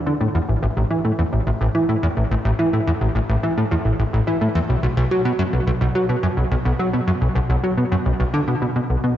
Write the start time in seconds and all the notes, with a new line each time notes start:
0.06 D3
0.21 A2
0.35 E2
0.49 A1
0.63 A1
0.77 A1
0.91 E3
1.05 A2
1.19 E2
1.33 A1
1.47 A1
1.61 A1
1.75 E3
1.89 A2
2.03 E2
2.17 A1
2.31 A1
2.45 A1
2.59 E3
2.73 A2
2.87 E2
3.01 A1
3.15 A1
3.29 A1
3.43 E3
3.57 A2
3.71 E2
3.85 A1
3.99 A1
4.13 A1
4.27 E3
4.41 A2
4.55 E2
4.69 B1
4.83 B1
4.97 B1
5.11 F#3
5.25 B2
5.39 F#2
5.53 B1
5.67 B1
5.81 B1
5.95 F#3
6.09 B2
6.23 F#2
6.37 B1
6.51 B1
6.65 B1
6.79 F#3
6.93 B2
7.07 F#2
7.21 B1
7.35 B1
7.49 B1
7.64 F#3
7.78 B2
7.92 F#2
8.06 B1
8.20 B1
8.34 D3
8.48 B2
8.62 B2
8.76 B2
8.90 B1
9.04 B2